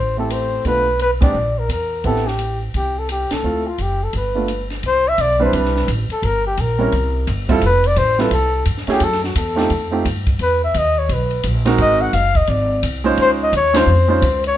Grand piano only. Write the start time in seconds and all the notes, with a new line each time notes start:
0.17 A3 C4 E4 G4
0.65 A3 B3 D4 F4
1.21 G#3 C4 D4 G4
2.04 B3 C4 E4 G4
3.44 A3 C4 E4 F4
4.35 A3 B3 D4 F4
5.39 G3 C4 D4 E4 B4
6.78 G3 C4 C#4 E4 A#4
7.49 G3 C4 E4 F4 A4
8.18 G3 C4 E4 F4 A4
8.88 A3 C#4 E4 F#4 G#4
9.56 A3 C4 D#4 F4 G4
9.91 A3 C4 D#4 F4 G4
11.65 G#3 C4 D#4 F#4 A#4
13.04 G#3 C#4 D#4 F4 C5
13.74 G#3 C#4 D#4 F4 C5
14.08 G#3 C#4 D#4 F4 C5